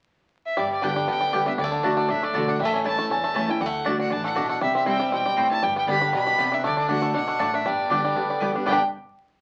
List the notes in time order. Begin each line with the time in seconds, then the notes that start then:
0.46 E5
0.57 G1 G2 G3 D5
0.72 D5
0.82 D3 G3 B3 D4 G4 D5 G5
0.96 G3
1.07 D2 D3 B3 G5
1.21 G3
1.32 D3 G3 B3 G4 D5 G5
1.46 B3 D4 G4 E5
1.57 D2 D3 G3 D5
1.64 A3
1.72 D3
1.83 D2 D3 A3 D4 F#4 D5 A5
1.97 A3 D5
2.09 C2 A2 D4 E5
2.23 A3 D5
2.33 B1 D3 A3 D4 F#4 D5 A5
2.48 D4 F#5
2.59 A1 A2 G3 E5
2.65 A3
2.74 C#4 E5
2.84 E3 A3 C#4 E4 C#5 A5
2.99 A3
3.10 E1 E2 C#4 A5
3.24 A3
3.34 E3 A3 C#4 E4 C#5 A5
3.48 C#4 E4 G5
3.61 D2 D3 G3 F#5
3.66 A3
3.84 D3 A3 D4 F#4 D5 A5
3.99 D4 F#5
4.10 A1 E3 D4 A5
4.24 A3 F#5
4.35 B2 A3 D4 F#4 D5 A5
4.49 A3 F#5
4.61 C2 C3 G3 E5
4.75 C4 E5
4.85 E3 G3 C4 E4 C5 G5
5.00 G3
5.11 G1 B2 C4 G5
5.26 G3
5.37 A2 C4 E4 C5 G5
5.51 E4 A5
5.62 G1 G2 G3 G5
5.76 B3 G5
5.87 D3 G3 B3 D4 G4 D5 G5 B5
6.01 G3
6.13 B1 B2 B3 B5
6.27 G3
6.38 C2 C3 B3 G4 D5 G5
6.52 D4 E5
6.64 D2 D3 A3 D5
6.77 D4 D5
6.88 D3 A3 D4 F#4 D5 F#5 A5
7.02 A3
7.14 B1 B2 D4 F#5
7.28 A3
7.39 A1 A2 A3 D4 F#4 D5 A5
7.54 D4 E5
7.65 G1 G2 G3 D5
7.90 D3 G3 B3 D4 G4 D5 G5
8.05 G3
8.15 D2 D3 B3
8.30 G3
8.40 D3 G3 B3 G4 D5 G5
8.54 B3 D4 G4
8.66 G1 G2 B2 D3 G3 B3 G4 D5 G5
8.71 D4 G4